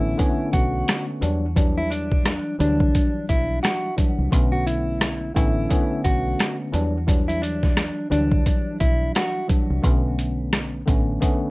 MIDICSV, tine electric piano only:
0, 0, Header, 1, 2, 480
1, 0, Start_track
1, 0, Key_signature, 2, "minor"
1, 0, Tempo, 689655
1, 1088, Time_signature, 4, 2, 24, 8
1, 8007, End_track
2, 0, Start_track
2, 0, Title_t, "Tine electric piano"
2, 0, Program_c, 0, 4
2, 0, Note_on_c, 0, 50, 100
2, 0, Note_on_c, 0, 57, 85
2, 0, Note_on_c, 0, 59, 82
2, 0, Note_on_c, 0, 61, 103
2, 108, Note_off_c, 0, 50, 0
2, 110, Note_off_c, 0, 57, 0
2, 112, Note_off_c, 0, 59, 0
2, 114, Note_off_c, 0, 61, 0
2, 120, Note_on_c, 0, 50, 87
2, 125, Note_on_c, 0, 57, 78
2, 128, Note_on_c, 0, 59, 80
2, 133, Note_on_c, 0, 61, 97
2, 843, Note_on_c, 0, 52, 93
2, 844, Note_off_c, 0, 50, 0
2, 846, Note_off_c, 0, 57, 0
2, 848, Note_off_c, 0, 59, 0
2, 848, Note_on_c, 0, 54, 83
2, 851, Note_off_c, 0, 61, 0
2, 852, Note_on_c, 0, 55, 84
2, 856, Note_on_c, 0, 62, 110
2, 1005, Note_off_c, 0, 52, 0
2, 1007, Note_off_c, 0, 54, 0
2, 1009, Note_off_c, 0, 55, 0
2, 1011, Note_off_c, 0, 62, 0
2, 1084, Note_on_c, 0, 52, 94
2, 1088, Note_on_c, 0, 54, 82
2, 1093, Note_on_c, 0, 55, 84
2, 1097, Note_on_c, 0, 62, 103
2, 1760, Note_off_c, 0, 52, 0
2, 1762, Note_off_c, 0, 54, 0
2, 1764, Note_off_c, 0, 55, 0
2, 1766, Note_off_c, 0, 62, 0
2, 1801, Note_on_c, 0, 52, 88
2, 1805, Note_on_c, 0, 54, 83
2, 1810, Note_on_c, 0, 55, 87
2, 1814, Note_on_c, 0, 62, 109
2, 2703, Note_off_c, 0, 52, 0
2, 2705, Note_off_c, 0, 54, 0
2, 2707, Note_off_c, 0, 55, 0
2, 2709, Note_off_c, 0, 62, 0
2, 2757, Note_on_c, 0, 52, 81
2, 2762, Note_on_c, 0, 54, 71
2, 2766, Note_on_c, 0, 55, 70
2, 2770, Note_on_c, 0, 62, 83
2, 2987, Note_off_c, 0, 52, 0
2, 2990, Note_off_c, 0, 54, 0
2, 2992, Note_off_c, 0, 55, 0
2, 2994, Note_off_c, 0, 62, 0
2, 2998, Note_on_c, 0, 50, 89
2, 3003, Note_on_c, 0, 57, 82
2, 3008, Note_on_c, 0, 59, 89
2, 3012, Note_on_c, 0, 61, 93
2, 3677, Note_off_c, 0, 50, 0
2, 3679, Note_off_c, 0, 57, 0
2, 3682, Note_off_c, 0, 59, 0
2, 3684, Note_off_c, 0, 61, 0
2, 3719, Note_on_c, 0, 50, 98
2, 3723, Note_on_c, 0, 57, 87
2, 3727, Note_on_c, 0, 59, 82
2, 3731, Note_on_c, 0, 61, 102
2, 3948, Note_off_c, 0, 50, 0
2, 3950, Note_off_c, 0, 57, 0
2, 3952, Note_off_c, 0, 59, 0
2, 3954, Note_off_c, 0, 61, 0
2, 3960, Note_on_c, 0, 50, 86
2, 3963, Note_on_c, 0, 57, 79
2, 3968, Note_on_c, 0, 59, 81
2, 3972, Note_on_c, 0, 61, 97
2, 4681, Note_on_c, 0, 52, 99
2, 4684, Note_off_c, 0, 50, 0
2, 4686, Note_off_c, 0, 57, 0
2, 4687, Note_on_c, 0, 54, 80
2, 4688, Note_off_c, 0, 59, 0
2, 4690, Note_off_c, 0, 61, 0
2, 4690, Note_on_c, 0, 55, 86
2, 4695, Note_on_c, 0, 62, 110
2, 4844, Note_off_c, 0, 52, 0
2, 4846, Note_off_c, 0, 54, 0
2, 4848, Note_off_c, 0, 55, 0
2, 4850, Note_off_c, 0, 62, 0
2, 4921, Note_on_c, 0, 52, 91
2, 4926, Note_on_c, 0, 54, 84
2, 4930, Note_on_c, 0, 55, 86
2, 4934, Note_on_c, 0, 62, 101
2, 5598, Note_off_c, 0, 52, 0
2, 5601, Note_off_c, 0, 54, 0
2, 5603, Note_off_c, 0, 55, 0
2, 5605, Note_off_c, 0, 62, 0
2, 5638, Note_on_c, 0, 52, 87
2, 5642, Note_on_c, 0, 54, 79
2, 5646, Note_on_c, 0, 55, 85
2, 5651, Note_on_c, 0, 62, 111
2, 6541, Note_off_c, 0, 52, 0
2, 6543, Note_off_c, 0, 54, 0
2, 6546, Note_off_c, 0, 55, 0
2, 6548, Note_off_c, 0, 62, 0
2, 6595, Note_on_c, 0, 52, 80
2, 6599, Note_on_c, 0, 54, 69
2, 6603, Note_on_c, 0, 55, 71
2, 6607, Note_on_c, 0, 62, 79
2, 6826, Note_off_c, 0, 52, 0
2, 6828, Note_off_c, 0, 54, 0
2, 6830, Note_off_c, 0, 55, 0
2, 6832, Note_off_c, 0, 62, 0
2, 6837, Note_on_c, 0, 50, 86
2, 6841, Note_on_c, 0, 57, 81
2, 6845, Note_on_c, 0, 59, 90
2, 6850, Note_on_c, 0, 61, 94
2, 7516, Note_off_c, 0, 50, 0
2, 7518, Note_off_c, 0, 57, 0
2, 7520, Note_off_c, 0, 59, 0
2, 7523, Note_off_c, 0, 61, 0
2, 7558, Note_on_c, 0, 50, 95
2, 7562, Note_on_c, 0, 57, 83
2, 7567, Note_on_c, 0, 59, 78
2, 7570, Note_on_c, 0, 61, 98
2, 7788, Note_off_c, 0, 50, 0
2, 7790, Note_off_c, 0, 57, 0
2, 7792, Note_off_c, 0, 59, 0
2, 7794, Note_off_c, 0, 61, 0
2, 7798, Note_on_c, 0, 50, 84
2, 7802, Note_on_c, 0, 57, 75
2, 7807, Note_on_c, 0, 59, 85
2, 7811, Note_on_c, 0, 61, 96
2, 8007, Note_off_c, 0, 50, 0
2, 8007, Note_off_c, 0, 57, 0
2, 8007, Note_off_c, 0, 59, 0
2, 8007, Note_off_c, 0, 61, 0
2, 8007, End_track
0, 0, End_of_file